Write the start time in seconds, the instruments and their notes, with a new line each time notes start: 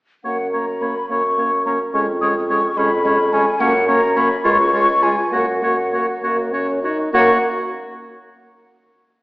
0.24 bassoon F#2, french horn A#3, clarinet C#4, oboe C#5, flute F#5
0.52 french horn A#3, clarinet C#4, oboe C#5, flute A#5
0.81 french horn A#3, clarinet C#4, oboe C#5, flute B5
1.09 bassoon F#2, french horn A#3, clarinet C#4, oboe C#5, flute C#6
1.37 french horn A#3, clarinet C#4, oboe C#5
1.65 french horn A#3, clarinet C#4, oboe C#5, flute A#5
1.94 bassoon F2, french horn G#3, clarinet C#4, oboe C#5, flute C#6
2.21 french horn G#3, clarinet C#4, oboe C#5, flute D#6
2.49 french horn G#3, clarinet C#4, oboe C#5, flute C#6
2.77 bassoon F2, french horn G#3, clarinet C#4, oboe C#5, flute B5
3.05 french horn G#3, clarinet C#4, oboe C#5
3.33 french horn G#3, clarinet C#4, oboe C#5, flute G#5
3.60 bassoon F#2, french horn A#3, clarinet C#4, oboe C#5, flute F#5
3.88 french horn A#3, clarinet C#4, oboe C#5, flute A#5
4.16 french horn A#3, clarinet C#4, oboe C#5, flute B5
4.45 bassoon C#2, french horn G#3, clarinet F4, oboe C#5, flute C#6
4.73 french horn G#3, clarinet F4, oboe C#5
5.02 french horn G#3, clarinet F4, oboe C#5, flute G#5
5.32 bassoon F#2, french horn A#3, clarinet F#4, oboe C#5, flute F#5
5.62 french horn A#3, clarinet F#4, oboe C#5
5.93 french horn A#3, clarinet F#4, oboe C#5
6.23 bassoon F#2, french horn A#3, clarinet F#4, oboe C#5
6.53 french horn C#4, clarinet F#4, oboe C#5
6.83 french horn D#4, clarinet F#4, oboe C#5
7.13 bassoon F#2, french horn A#3, clarinet F#4, oboe C#5, flute F#5